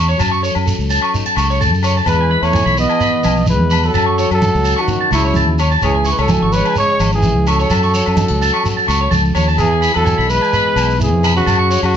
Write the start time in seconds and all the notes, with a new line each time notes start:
Already playing: E2 G#2 G#3 C#4 G#4
0.08 C#5, shekere
0.18 F#2 F#3 A5, low agogo, shekere
0.32 C#6, shekere
0.42 A4 C#5, shekere
0.55 F#2, low agogo, shekere
0.66 A4, shekere
0.79 C#2, shekere
0.90 C#4 A5, shekere
1.02 C#6, low agogo, shekere
1.14 D#4, shekere
1.26 F#4 A5, shekere
1.36 C#2 C#3 C#6, low agogo, shekere
1.50 C#5, shekere
1.60 A4 A5, shekere
1.72 F#2, shekere
1.83 F#4 C#5, low agogo, shekere
1.97 A5, shekere
2.06 E2 E3 G#3 B4, muted conga, low agogo, shekere
2.21 G#5
2.29 E4 B5, muted conga
2.42 E2 A3 B4 C#5, low agogo, shekere
2.53 E4 G#5, high conga, shekere
2.66 B1 B5, shekere
2.77 G#3 B3 B4 D#5, muted conga, shekere
2.89 G#5, low agogo, shekere
3.00 B3 B5, muted conga, shekere
3.13 B4
3.24 B1 B2 G#5, high conga, low agogo, shekere
3.46 G#3 E4 B4, high conga, shekere
3.60 E2
3.70 B3 B5, low agogo, shekere
3.83 F#3 A4 B4, shekere
3.94 F#2 F#3 A5, muted conga, low agogo, shekere
4.06 C#6
4.18 F#4 C#5, muted conga, shekere
4.31 F#2 F#3 A4, low agogo, shekere
4.42 F#4, high conga, shekere
4.54 C#2, shekere
4.65 C#4 A5, shekere
4.76 D#3 F#4 C#6, low agogo, shekere
4.88 C#4, muted conga, low conga, shekere
5.01 A5
5.11 C#2 C#3 E4 C#6, low conga, low agogo, shekere
5.16 C#3
5.25 C#5, shekere
5.34 E3 A5, high conga, shekere
5.48 D#2
5.59 D#3 C#5, low agogo, shekere
5.72 A5
5.82 C#2 C#3 E3 G#4 C#5, muted conga, low agogo, shekere
5.95 G#5
6.05 E4 C#6, shekere
6.11 G#3 B4
6.17 C#2 A4 C#5, low agogo, shekere
6.23 F#3
6.29 E4 G#5, high conga, shekere
6.42 G#1 C#6
6.53 G#3 B4 C#5, muted conga, shekere
6.57 G#3
6.65 G#5, low agogo, shekere
6.76 G#3 C#4 C#5 C#6, muted conga, shekere
6.90 C#5
7.00 G#1 G#2, muted clean electric guitar stroke, high conga, low agogo, shekere
7.12 E3 G#4, shekere
7.22 E4, high conga, shekere
7.36 C#2
7.47 F#3 C#4 A4 C#6, low agogo, shekere
7.60 C#5, shekere
7.70 F#2 F#3 A5, low agogo, shekere
7.83 C#6, shekere
7.94 F#4 C#5, muted conga, shekere
8.06 F#2, low agogo, shekere
8.15 D#4, high conga, shekere
8.28 C#2 F#4, shekere
8.40 C#4 A5, muted conga, shekere
8.54 C#6, low agogo, shekere
8.64 F#4, muted conga, shekere
8.77 A5, shekere
8.87 C#2 C#3 C#6, low agogo, shekere
9.01 C#5
9.11 C#2 A4 A5, high conga, shekere
9.25 shekere
9.35 D#2 F#4 C#5, low agogo, shekere
9.48 A5, shekere
9.58 E2 E3 G#4, muted clean electric guitar stroke, low agogo, shekere
9.71 G#5
9.82 E4 B5, shekere
9.94 E2 F#3 A4 B4, low agogo
10.05 E4 G#5, shekere
10.18 B1 B5, shekere
10.29 G#3 B4, shekere
10.41 G#5, low agogo, shekere
10.53 B3 B5, shekere
10.66 B4
10.76 B1 B2 G#5, low agogo, shekere
10.90 shekere
10.99 E3 E4 G#4, shekere
11.12 F2
11.23 B3 B5, low agogo, shekere
11.36 C#3 F#4 B4, shekere
11.46 F#2 F#3 A5, low agogo, shekere
11.59 C#6
11.71 C#4 C#5, shekere
11.83 F#2 C#3 F#4, low agogo, shekere